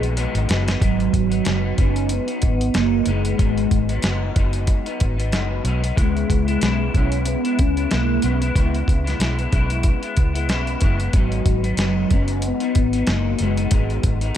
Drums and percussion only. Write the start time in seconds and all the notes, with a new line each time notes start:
0.03 closed hi-hat
0.17 closed hi-hat
0.35 closed hi-hat
0.49 snare, closed hi-hat
0.68 snare, closed hi-hat
0.82 kick, closed hi-hat
1.00 closed hi-hat
1.13 kick, closed hi-hat
1.32 closed hi-hat
1.45 snare, closed hi-hat
1.78 kick, closed hi-hat
1.96 closed hi-hat
2.09 closed hi-hat
2.28 closed hi-hat
2.42 kick, closed hi-hat
2.61 closed hi-hat
2.74 snare, closed hi-hat
3.06 closed hi-hat
3.25 closed hi-hat
3.39 kick, closed hi-hat
3.58 closed hi-hat
3.71 kick, closed hi-hat
3.89 closed hi-hat
4.02 snare, closed hi-hat
4.36 kick, closed hi-hat
4.53 closed hi-hat
4.67 kick, closed hi-hat
4.86 closed hi-hat
5.00 kick, closed hi-hat
5.20 closed hi-hat
5.32 snare, closed hi-hat
5.65 closed hi-hat
5.84 closed hi-hat
5.97 kick, closed hi-hat
6.17 closed hi-hat
6.30 kick, closed hi-hat
6.48 closed hi-hat
6.61 snare, closed hi-hat
6.94 kick, closed hi-hat
7.12 closed hi-hat
7.26 closed hi-hat
7.45 closed hi-hat
7.59 kick, closed hi-hat
7.77 closed hi-hat
7.91 snare, closed hi-hat
8.22 closed hi-hat
8.42 closed hi-hat
8.56 kick, closed hi-hat
8.75 closed hi-hat
8.88 kick, closed hi-hat
9.07 snare, closed hi-hat
9.20 snare, closed hi-hat
9.39 closed hi-hat
9.52 kick, closed hi-hat
9.70 closed hi-hat
9.83 kick, closed hi-hat
10.03 closed hi-hat
10.17 kick, closed hi-hat
10.35 closed hi-hat
10.49 snare, closed hi-hat
10.67 closed hi-hat
10.81 kick, closed hi-hat
11.00 closed hi-hat
11.13 kick, closed hi-hat
11.32 closed hi-hat
11.46 kick, closed hi-hat
11.64 closed hi-hat
11.77 snare, closed hi-hat
12.11 kick, closed hi-hat
12.28 closed hi-hat
12.42 closed hi-hat
12.60 closed hi-hat
12.75 kick, closed hi-hat
12.93 closed hi-hat
13.07 snare, closed hi-hat
13.39 closed hi-hat
13.57 closed hi-hat
13.71 kick, closed hi-hat
13.90 closed hi-hat
14.03 kick, closed hi-hat
14.21 closed hi-hat